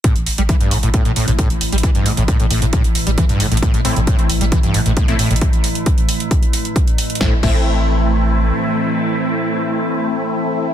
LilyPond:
<<
  \new Staff \with { instrumentName = "Supersaw synth" } { \time 4/4 \key a \minor \tempo 4 = 134 r1 | r1 | r8 <a c' e'>16 r2 r8 <a c' e'>16 r8 | r1 |
<a c' e'>16 r16 <a c' e'>2.~ <a c' e'>8~ | <a c' e'>1 | }
  \new Staff \with { instrumentName = "Synth drone" } { \clef bass \time 4/4 \key a \minor <a, e>1~ | <a, e>1~ | <a, e>1~ | <a, e>1 |
<a, e>1~ | <a, e>1 | }
  \new Staff \with { instrumentName = "Acid bass" } { \clef bass \time 4/4 \key a \minor a,16 r8 g16 e16 g,16 a,16 a,16 a,16 a,16 a,16 a,16 a,16 r8 g16 | e16 g,16 a,16 a,16 a,16 a,16 a,16 a,16 a,16 r8 g16 e16 g,16 a,16 a,16 | a,16 a,16 a,16 a,16 a,16 r8 g16 e16 g,16 a,16 a,16 a,16 a,16 a,16 a,16 | r1 |
a,16 r16 a,16 r2. r16 | r1 | }
  \new Staff \with { instrumentName = "Sub bass" } { \clef bass \time 4/4 \key a \minor r16 a,,16 r16 a,,16 r8 a,,16 a,,16 r16 a,,16 r16 a,,16 r16 a,,16 r16 a,,16 | r16 a,,16 r16 a,,16 r8 a,,16 a,,16 r16 a,,16 r16 a,,16 r16 a,,16 r16 a,,16 | r16 a,,16 r16 a,,16 r8 a,,16 a,,16 r16 a,,16 r16 a,,16 r16 a,,16 r16 a,,16 | r1 |
a,,16 r16 a,,2~ a,,8 r4 | r1 | }
  \new DrumStaff \with { instrumentName = "Drums" } \drummode { \time 4/4 <hh bd>16 hh16 hho16 hh16 <hh bd>16 hh16 hho16 hh16 <hh bd>16 hh16 hho16 hh16 <hh bd>16 hh16 hho16 hh32 hh32 | <hh bd>16 hh16 hho16 hh16 <hh bd>16 hh16 hho16 hh16 <hh bd>16 hh16 hho16 hh16 <hh bd>16 hh16 hho16 hh32 hh32 | <hh bd>16 hh16 hho16 hh16 <hh bd>16 hh16 hho16 hh16 <hh bd>16 hh16 hho16 hh16 <hh bd>16 hh16 hho16 hh32 hh32 | <hh bd>16 hh16 hho16 hh16 <hh bd>16 hh16 hho16 hh16 <hh bd>16 hh16 hho16 hh16 <hh bd>16 hh16 hho16 hh32 hh32 |
<bd sn>8 <cymc bd>8 r4 r4 r4 | r4 r4 r4 r4 | }
>>